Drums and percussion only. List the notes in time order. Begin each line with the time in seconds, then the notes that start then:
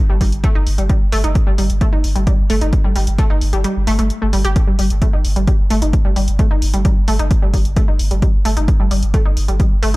0.21 kick, open hi-hat
0.32 closed hi-hat
0.44 kick, closed hi-hat
0.67 open hi-hat
0.78 closed hi-hat
0.89 kick, closed hi-hat
1.12 open hi-hat
1.24 closed hi-hat
1.35 kick, closed hi-hat
1.58 open hi-hat
1.70 closed hi-hat
1.81 kick, closed hi-hat
2.04 open hi-hat
2.16 closed hi-hat
2.27 kick, closed hi-hat
2.50 open hi-hat
2.61 closed hi-hat
2.73 kick, closed hi-hat
2.96 open hi-hat
3.07 closed hi-hat
3.18 kick, closed hi-hat
3.41 open hi-hat
3.53 closed hi-hat
3.64 closed hi-hat
3.87 open hi-hat
3.99 closed hi-hat
4.10 closed hi-hat
4.33 open hi-hat
4.45 closed hi-hat
4.56 kick, closed hi-hat
4.79 open hi-hat
4.90 closed hi-hat
5.02 kick, closed hi-hat
5.25 open hi-hat
5.36 closed hi-hat
5.47 kick, closed hi-hat
5.70 open hi-hat
5.82 closed hi-hat
5.93 kick, closed hi-hat
6.16 open hi-hat
6.28 closed hi-hat
6.39 kick, closed hi-hat
6.62 open hi-hat
6.74 closed hi-hat
6.85 kick, closed hi-hat
7.08 open hi-hat
7.19 closed hi-hat
7.31 kick, closed hi-hat
7.54 kick, open hi-hat
7.65 closed hi-hat
7.76 kick, closed hi-hat
7.99 open hi-hat
8.11 closed hi-hat
8.22 kick, closed hi-hat
8.45 open hi-hat
8.57 closed hi-hat
8.68 kick, closed hi-hat
8.91 open hi-hat
9.03 closed hi-hat
9.14 kick, closed hi-hat
9.37 open hi-hat
9.48 closed hi-hat
9.60 kick, closed hi-hat
9.83 open hi-hat